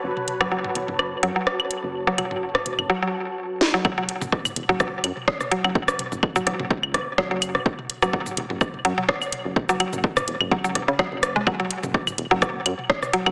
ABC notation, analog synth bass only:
X:1
M:4/4
L:1/16
Q:"Swing 16ths" 1/4=126
K:F#m
V:1 name="Analog synth bass" clef=bass
F,,, z2 F,,,2 z E,,, F,,,2 z F,, z4 F,,,- | F,,,2 z F,,,2 z E,,, F,,, z8 | F,,, z2 F,,,2 z E,,, F,,,2 z F,, z4 F,,,- | F,,,2 z F,,,2 z E,,, F,,, C,,2 F,,, z2 F,,,2 z |
F,,, z2 F,,,2 z E,,, F,,,2 z F,, z4 F,,,- | F,,,2 z F,,,2 z E,,, F,,, C,,2 F,,, z2 F,,,2 z | F,,, z2 F,,,2 z E,,, F,,,2 z F,, z4 F,,, |]